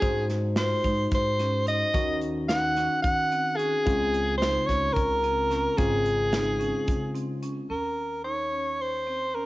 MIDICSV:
0, 0, Header, 1, 6, 480
1, 0, Start_track
1, 0, Tempo, 548948
1, 17, Time_signature, 7, 3, 24, 8
1, 8270, End_track
2, 0, Start_track
2, 0, Title_t, "Soprano saxophone"
2, 0, Program_c, 0, 64
2, 0, Note_on_c, 0, 68, 86
2, 224, Note_off_c, 0, 68, 0
2, 509, Note_on_c, 0, 72, 74
2, 949, Note_off_c, 0, 72, 0
2, 1003, Note_on_c, 0, 72, 80
2, 1437, Note_off_c, 0, 72, 0
2, 1467, Note_on_c, 0, 75, 90
2, 1909, Note_off_c, 0, 75, 0
2, 2174, Note_on_c, 0, 78, 90
2, 2621, Note_off_c, 0, 78, 0
2, 2643, Note_on_c, 0, 78, 94
2, 3115, Note_on_c, 0, 68, 82
2, 3128, Note_off_c, 0, 78, 0
2, 3820, Note_off_c, 0, 68, 0
2, 3826, Note_on_c, 0, 72, 84
2, 4078, Note_on_c, 0, 73, 86
2, 4091, Note_off_c, 0, 72, 0
2, 4314, Note_on_c, 0, 70, 83
2, 4327, Note_off_c, 0, 73, 0
2, 5049, Note_on_c, 0, 68, 78
2, 5062, Note_off_c, 0, 70, 0
2, 6252, Note_off_c, 0, 68, 0
2, 6738, Note_on_c, 0, 70, 64
2, 7184, Note_off_c, 0, 70, 0
2, 7207, Note_on_c, 0, 73, 71
2, 7705, Note_on_c, 0, 72, 71
2, 7718, Note_off_c, 0, 73, 0
2, 8174, Note_on_c, 0, 70, 72
2, 8187, Note_off_c, 0, 72, 0
2, 8270, Note_off_c, 0, 70, 0
2, 8270, End_track
3, 0, Start_track
3, 0, Title_t, "Marimba"
3, 0, Program_c, 1, 12
3, 14, Note_on_c, 1, 63, 77
3, 437, Note_off_c, 1, 63, 0
3, 500, Note_on_c, 1, 65, 73
3, 710, Note_off_c, 1, 65, 0
3, 738, Note_on_c, 1, 63, 66
3, 1160, Note_off_c, 1, 63, 0
3, 1220, Note_on_c, 1, 61, 69
3, 1429, Note_off_c, 1, 61, 0
3, 1456, Note_on_c, 1, 63, 68
3, 1667, Note_off_c, 1, 63, 0
3, 1695, Note_on_c, 1, 61, 81
3, 2118, Note_off_c, 1, 61, 0
3, 2178, Note_on_c, 1, 63, 74
3, 2388, Note_off_c, 1, 63, 0
3, 2422, Note_on_c, 1, 61, 67
3, 2842, Note_off_c, 1, 61, 0
3, 2904, Note_on_c, 1, 60, 68
3, 3112, Note_off_c, 1, 60, 0
3, 3139, Note_on_c, 1, 61, 65
3, 3349, Note_off_c, 1, 61, 0
3, 3381, Note_on_c, 1, 61, 89
3, 3801, Note_off_c, 1, 61, 0
3, 3868, Note_on_c, 1, 63, 74
3, 4073, Note_off_c, 1, 63, 0
3, 4099, Note_on_c, 1, 61, 68
3, 4520, Note_off_c, 1, 61, 0
3, 4579, Note_on_c, 1, 60, 72
3, 4788, Note_off_c, 1, 60, 0
3, 4814, Note_on_c, 1, 61, 68
3, 5026, Note_off_c, 1, 61, 0
3, 5049, Note_on_c, 1, 61, 88
3, 5474, Note_off_c, 1, 61, 0
3, 5531, Note_on_c, 1, 63, 78
3, 5744, Note_off_c, 1, 63, 0
3, 5767, Note_on_c, 1, 61, 67
3, 6193, Note_off_c, 1, 61, 0
3, 6249, Note_on_c, 1, 60, 70
3, 6463, Note_off_c, 1, 60, 0
3, 6493, Note_on_c, 1, 61, 62
3, 6706, Note_off_c, 1, 61, 0
3, 6732, Note_on_c, 1, 61, 65
3, 7157, Note_off_c, 1, 61, 0
3, 7213, Note_on_c, 1, 63, 58
3, 7426, Note_off_c, 1, 63, 0
3, 7453, Note_on_c, 1, 61, 49
3, 7877, Note_off_c, 1, 61, 0
3, 7929, Note_on_c, 1, 60, 56
3, 8144, Note_off_c, 1, 60, 0
3, 8174, Note_on_c, 1, 61, 53
3, 8270, Note_off_c, 1, 61, 0
3, 8270, End_track
4, 0, Start_track
4, 0, Title_t, "Tine electric piano"
4, 0, Program_c, 2, 4
4, 11, Note_on_c, 2, 63, 55
4, 12, Note_on_c, 2, 56, 58
4, 12, Note_on_c, 2, 66, 48
4, 17, Note_on_c, 2, 72, 61
4, 1660, Note_off_c, 2, 63, 0
4, 1660, Note_off_c, 2, 66, 0
4, 1661, Note_off_c, 2, 56, 0
4, 1663, Note_off_c, 2, 72, 0
4, 1694, Note_on_c, 2, 51, 59
4, 1695, Note_on_c, 2, 61, 53
4, 1697, Note_on_c, 2, 66, 65
4, 1698, Note_on_c, 2, 63, 53
4, 3341, Note_off_c, 2, 51, 0
4, 3342, Note_off_c, 2, 61, 0
4, 3343, Note_off_c, 2, 63, 0
4, 3343, Note_off_c, 2, 66, 0
4, 3369, Note_on_c, 2, 56, 53
4, 3371, Note_on_c, 2, 49, 62
4, 3372, Note_on_c, 2, 60, 54
4, 3374, Note_on_c, 2, 65, 66
4, 5018, Note_off_c, 2, 56, 0
4, 5019, Note_off_c, 2, 49, 0
4, 5020, Note_off_c, 2, 60, 0
4, 5021, Note_off_c, 2, 65, 0
4, 5047, Note_on_c, 2, 49, 57
4, 5049, Note_on_c, 2, 56, 56
4, 5051, Note_on_c, 2, 60, 56
4, 5056, Note_on_c, 2, 65, 67
4, 6698, Note_off_c, 2, 49, 0
4, 6699, Note_off_c, 2, 56, 0
4, 6700, Note_off_c, 2, 60, 0
4, 6702, Note_off_c, 2, 65, 0
4, 8270, End_track
5, 0, Start_track
5, 0, Title_t, "Upright bass"
5, 0, Program_c, 3, 32
5, 20, Note_on_c, 3, 44, 93
5, 624, Note_off_c, 3, 44, 0
5, 739, Note_on_c, 3, 44, 78
5, 940, Note_off_c, 3, 44, 0
5, 977, Note_on_c, 3, 44, 80
5, 1583, Note_off_c, 3, 44, 0
5, 1701, Note_on_c, 3, 39, 90
5, 2507, Note_off_c, 3, 39, 0
5, 2661, Note_on_c, 3, 51, 84
5, 3265, Note_off_c, 3, 51, 0
5, 3380, Note_on_c, 3, 37, 102
5, 3984, Note_off_c, 3, 37, 0
5, 4100, Note_on_c, 3, 37, 84
5, 4300, Note_off_c, 3, 37, 0
5, 4343, Note_on_c, 3, 37, 83
5, 4945, Note_off_c, 3, 37, 0
5, 5059, Note_on_c, 3, 32, 86
5, 5865, Note_off_c, 3, 32, 0
5, 6015, Note_on_c, 3, 49, 75
5, 6622, Note_off_c, 3, 49, 0
5, 6735, Note_on_c, 3, 39, 55
5, 8270, Note_off_c, 3, 39, 0
5, 8270, End_track
6, 0, Start_track
6, 0, Title_t, "Drums"
6, 19, Note_on_c, 9, 36, 92
6, 19, Note_on_c, 9, 42, 68
6, 107, Note_off_c, 9, 36, 0
6, 107, Note_off_c, 9, 42, 0
6, 259, Note_on_c, 9, 38, 31
6, 259, Note_on_c, 9, 42, 52
6, 346, Note_off_c, 9, 38, 0
6, 346, Note_off_c, 9, 42, 0
6, 491, Note_on_c, 9, 38, 103
6, 491, Note_on_c, 9, 42, 75
6, 578, Note_off_c, 9, 38, 0
6, 578, Note_off_c, 9, 42, 0
6, 737, Note_on_c, 9, 36, 65
6, 738, Note_on_c, 9, 42, 54
6, 825, Note_off_c, 9, 36, 0
6, 825, Note_off_c, 9, 42, 0
6, 974, Note_on_c, 9, 38, 32
6, 974, Note_on_c, 9, 42, 71
6, 978, Note_on_c, 9, 36, 99
6, 1062, Note_off_c, 9, 38, 0
6, 1062, Note_off_c, 9, 42, 0
6, 1065, Note_off_c, 9, 36, 0
6, 1221, Note_on_c, 9, 38, 32
6, 1221, Note_on_c, 9, 42, 56
6, 1308, Note_off_c, 9, 38, 0
6, 1308, Note_off_c, 9, 42, 0
6, 1461, Note_on_c, 9, 42, 61
6, 1549, Note_off_c, 9, 42, 0
6, 1699, Note_on_c, 9, 42, 76
6, 1700, Note_on_c, 9, 36, 104
6, 1787, Note_off_c, 9, 42, 0
6, 1788, Note_off_c, 9, 36, 0
6, 1937, Note_on_c, 9, 42, 58
6, 2024, Note_off_c, 9, 42, 0
6, 2180, Note_on_c, 9, 38, 103
6, 2180, Note_on_c, 9, 42, 82
6, 2268, Note_off_c, 9, 38, 0
6, 2268, Note_off_c, 9, 42, 0
6, 2419, Note_on_c, 9, 38, 30
6, 2419, Note_on_c, 9, 42, 58
6, 2506, Note_off_c, 9, 38, 0
6, 2506, Note_off_c, 9, 42, 0
6, 2657, Note_on_c, 9, 42, 73
6, 2659, Note_on_c, 9, 36, 99
6, 2745, Note_off_c, 9, 42, 0
6, 2747, Note_off_c, 9, 36, 0
6, 2903, Note_on_c, 9, 42, 54
6, 2991, Note_off_c, 9, 42, 0
6, 3141, Note_on_c, 9, 42, 59
6, 3229, Note_off_c, 9, 42, 0
6, 3381, Note_on_c, 9, 36, 100
6, 3382, Note_on_c, 9, 42, 71
6, 3468, Note_off_c, 9, 36, 0
6, 3470, Note_off_c, 9, 42, 0
6, 3622, Note_on_c, 9, 42, 56
6, 3709, Note_off_c, 9, 42, 0
6, 3865, Note_on_c, 9, 38, 102
6, 3865, Note_on_c, 9, 42, 76
6, 3952, Note_off_c, 9, 38, 0
6, 3952, Note_off_c, 9, 42, 0
6, 4100, Note_on_c, 9, 36, 64
6, 4104, Note_on_c, 9, 38, 30
6, 4104, Note_on_c, 9, 42, 55
6, 4188, Note_off_c, 9, 36, 0
6, 4192, Note_off_c, 9, 38, 0
6, 4192, Note_off_c, 9, 42, 0
6, 4340, Note_on_c, 9, 36, 93
6, 4345, Note_on_c, 9, 42, 69
6, 4428, Note_off_c, 9, 36, 0
6, 4432, Note_off_c, 9, 42, 0
6, 4581, Note_on_c, 9, 42, 53
6, 4668, Note_off_c, 9, 42, 0
6, 4819, Note_on_c, 9, 38, 33
6, 4819, Note_on_c, 9, 42, 54
6, 4907, Note_off_c, 9, 38, 0
6, 4907, Note_off_c, 9, 42, 0
6, 5057, Note_on_c, 9, 36, 105
6, 5058, Note_on_c, 9, 42, 76
6, 5145, Note_off_c, 9, 36, 0
6, 5146, Note_off_c, 9, 42, 0
6, 5297, Note_on_c, 9, 42, 59
6, 5384, Note_off_c, 9, 42, 0
6, 5534, Note_on_c, 9, 38, 103
6, 5534, Note_on_c, 9, 42, 81
6, 5621, Note_off_c, 9, 38, 0
6, 5621, Note_off_c, 9, 42, 0
6, 5777, Note_on_c, 9, 42, 57
6, 5865, Note_off_c, 9, 42, 0
6, 6012, Note_on_c, 9, 42, 77
6, 6016, Note_on_c, 9, 36, 97
6, 6100, Note_off_c, 9, 42, 0
6, 6103, Note_off_c, 9, 36, 0
6, 6255, Note_on_c, 9, 42, 59
6, 6343, Note_off_c, 9, 42, 0
6, 6493, Note_on_c, 9, 42, 61
6, 6581, Note_off_c, 9, 42, 0
6, 8270, End_track
0, 0, End_of_file